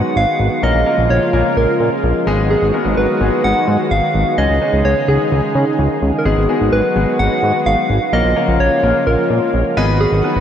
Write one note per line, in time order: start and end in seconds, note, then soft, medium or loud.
0.00 0.61 D#3 medium
0.00 0.61 F#3 medium
0.00 10.40 G#3 medium
0.00 0.61 B3 medium
0.00 0.61 F#4 medium
0.00 0.16 F#5 loud
0.16 0.26 G#1 loud
0.16 0.65 F5 loud
0.39 0.49 G#1 loud
0.63 0.73 A#1 loud
0.63 2.25 C#3 medium
0.63 2.25 F3 medium
0.63 2.25 A#3 medium
0.63 0.79 A#3 medium
0.63 0.79 C#4 medium
0.63 2.25 F4 medium
0.63 0.79 F4 medium
0.63 0.79 A#4 medium
0.63 1.12 D#5 loud
0.74 0.84 A#1 medium
0.86 1.18 A#3 medium
0.86 1.18 C#4 medium
0.86 1.18 F4 medium
0.86 1.18 A#4 medium
0.98 1.08 A#1 medium
1.10 1.19 A#1 loud
1.10 1.59 C#5 medium
1.33 1.43 A#1 loud
1.33 1.97 A#3 medium
1.33 1.97 C#4 medium
1.33 1.97 F4 medium
1.33 1.97 A#4 medium
1.57 1.66 A#1 loud
1.57 2.27 A#4 medium
1.80 1.90 A#2 medium
2.04 2.13 A#1 loud
2.27 2.56 G#1 loud
2.27 4.36 D#3 medium
2.27 4.36 F#3 medium
2.27 2.65 G#3 medium
2.27 4.36 B3 medium
2.27 2.65 B3 medium
2.27 2.65 D#4 medium
2.27 4.36 F#4 medium
2.27 2.65 G#4 loud
2.50 2.94 G#4 loud
2.62 2.72 G#1 loud
2.74 3.06 G#3 medium
2.74 3.06 B3 medium
2.74 3.06 D#4 medium
2.74 3.06 A#4 medium
2.86 2.95 G#1 loud
2.97 3.07 G#1 loud
2.97 3.46 B4 loud
3.21 3.30 G#1 loud
3.21 3.84 G#3 medium
3.21 3.84 B3 medium
3.21 3.84 D#4 medium
3.21 3.84 G#4 medium
3.44 3.54 G#1 loud
3.44 3.91 F#5 loud
3.68 3.77 G#2 loud
3.91 4.01 G#1 loud
3.91 4.40 F5 loud
4.15 4.24 G#1 loud
4.38 4.48 C#2 loud
4.38 6.24 C#3 medium
4.38 8.09 D#3 medium
4.38 4.54 G#3 medium
4.38 4.54 C#4 medium
4.38 4.54 D#4 medium
4.38 6.24 D#4 medium
4.38 4.54 G#4 medium
4.38 6.24 G#4 medium
4.38 4.86 D#5 loud
4.50 4.59 C#2 medium
4.62 4.93 G#3 medium
4.62 4.93 C#4 medium
4.62 4.93 D#4 medium
4.62 4.93 G#4 medium
4.73 4.83 C#2 loud
4.85 4.95 C#2 loud
4.85 5.08 C#5 medium
5.08 5.18 C#2 loud
5.08 5.72 G#3 medium
5.08 5.72 C#4 medium
5.08 5.72 D#4 medium
5.08 5.72 G#4 medium
5.08 5.98 G#4 medium
5.32 5.42 C#2 loud
5.55 5.65 C#3 medium
5.79 5.88 C#2 loud
6.02 6.12 C#2 medium
6.18 6.27 A#4 medium
6.25 6.35 G#1 loud
6.25 8.11 F#3 medium
6.25 6.41 G#3 medium
6.25 6.41 B3 medium
6.25 8.11 B3 medium
6.25 6.41 D#4 medium
6.25 8.11 F#4 medium
6.25 6.41 G#4 medium
6.25 6.74 G#4 medium
6.37 6.47 G#1 medium
6.49 6.81 G#3 medium
6.49 6.81 B3 medium
6.49 6.81 D#4 medium
6.49 6.81 G#4 medium
6.61 6.70 G#1 loud
6.72 6.82 G#1 loud
6.72 7.21 B4 loud
6.96 7.06 G#1 loud
6.96 7.60 G#3 medium
6.96 7.60 B3 medium
6.96 7.60 D#4 medium
6.96 7.59 G#4 medium
7.19 7.29 G#1 loud
7.19 7.68 F#5 loud
7.43 7.52 G#2 loud
7.66 7.76 G#1 loud
7.66 8.13 F5 loud
7.90 7.99 G#1 medium
8.13 8.23 A#1 loud
8.13 9.75 C#3 medium
8.13 9.75 F3 medium
8.13 8.29 A#3 medium
8.13 9.75 A#3 medium
8.13 8.29 C#4 medium
8.13 8.29 F4 medium
8.13 9.75 F4 medium
8.13 8.29 A#4 medium
8.13 8.62 D#5 loud
8.25 8.34 A#1 loud
8.36 8.68 A#3 medium
8.36 8.68 C#4 medium
8.36 8.68 F4 medium
8.36 8.68 A#4 medium
8.48 8.58 A#1 medium
8.60 8.70 A#1 loud
8.60 9.08 C#5 loud
8.83 8.93 A#1 loud
8.83 9.47 A#3 medium
8.83 9.47 C#4 medium
8.83 9.47 F4 medium
8.83 9.47 A#4 medium
9.07 9.17 A#1 loud
9.07 9.77 A#4 medium
9.30 9.40 A#2 medium
9.54 9.63 A#1 loud
9.77 10.06 G#1 loud
9.77 10.40 D#3 medium
9.77 10.40 F#3 medium
9.77 10.15 B3 medium
9.77 10.40 B3 medium
9.77 10.15 D#4 medium
9.77 10.40 F#4 medium
9.77 10.15 G#4 medium
9.77 10.15 B4 loud
10.01 10.40 G#4 loud
10.12 10.22 G#1 loud
10.24 10.40 B3 medium
10.24 10.40 D#4 medium
10.24 10.40 G#4 medium
10.24 10.40 B4 medium
10.36 10.40 G#1 medium